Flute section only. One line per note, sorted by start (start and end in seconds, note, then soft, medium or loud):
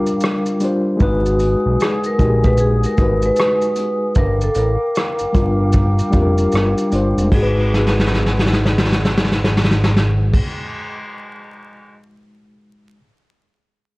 0.00 0.73 A#4 medium
0.00 0.70 F5 medium
0.00 0.76 G5 medium
0.00 0.74 D6 medium
1.01 4.13 G#4 medium
1.01 4.13 F#5 medium
1.01 4.13 G#5 medium
1.01 4.13 D#6 medium
4.16 7.29 A#4 medium
4.16 7.29 F5 medium
4.16 7.29 G5 medium
4.16 7.29 D6 medium
7.32 10.41 D#4 medium
7.32 10.41 G#4 medium
7.32 10.41 B4 medium
7.32 10.41 F#5 medium